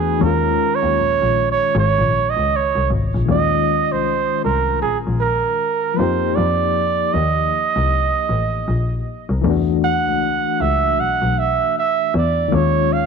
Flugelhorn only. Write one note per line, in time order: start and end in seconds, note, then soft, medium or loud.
0.00 0.25 G#4 medium
0.23 0.77 A#4 medium
0.75 1.50 C#5 loud
1.52 1.74 C#5 loud
1.79 2.31 C#5 loud
2.30 2.58 D#5 loud
2.56 2.92 C#5 medium
3.31 3.94 D#5 loud
3.92 4.44 C5 medium
4.44 4.80 A#4 medium
4.82 4.98 G#4 medium
5.20 5.99 A#4 medium
5.98 6.37 C5 medium
6.36 7.15 D5 medium
7.14 9.06 D#5 medium
9.84 10.63 F#5 loud
10.61 11.02 E5 medium
11.00 11.40 F#5 loud
11.39 11.76 E5 medium
11.79 12.13 E5 loud
12.17 12.56 D5 medium
12.55 12.95 C#5 medium
12.93 13.06 F5 loud